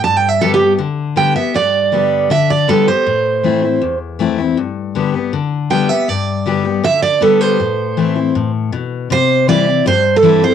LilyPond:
<<
  \new Staff \with { instrumentName = "Steel-string acoustic guitar" } { \time 4/4 \key g \mixolydian \tempo 4 = 159 \tuplet 3/2 { a''8 g''8 e''8 a'8 g'8. r16 } r4 g''8 e''8 | d''2 e''8 d''8 a'8 c''8~ | c''2~ c''8 r4. | r2. g''8 e''8 |
d''2 e''8 d''8 a'8 c''8~ | c''2~ c''8 r4. | c''4 d''4 c''8. a'8. c''8 | }
  \new Staff \with { instrumentName = "Steel-string acoustic guitar" } { \time 4/4 \key g \mixolydian << { r4 <d g b g'>8 <b g'>8 r4 <d g b g'>8 <b g'>8 | r4 <d g b g'>4 r4 <d g b g'>8 <b g'>8 | r4 <e a c' e'>8 <c' e'>8 r4 <e a c' e'>8 <c' e'>8 | r4 <d g b g'>8 <b g'>8 r4 <d g b g'>8 <b g'>8 |
r4 <d g b g'>8 <b g'>8 r4 <d g b g'>4 | r4 <e a c' e'>8 <c' e'>8 r2 | r4 <e g c' e'>8 <c' e'>8 r4 <e g c' e'>8 <c' e'>8 | } \\ { g,2 d2 | g,2 d2 | a,2 e,2 | g,2 d2 |
g,2 d2 | a,2 a,4 b,4 | c2 g,2 | } >> }
>>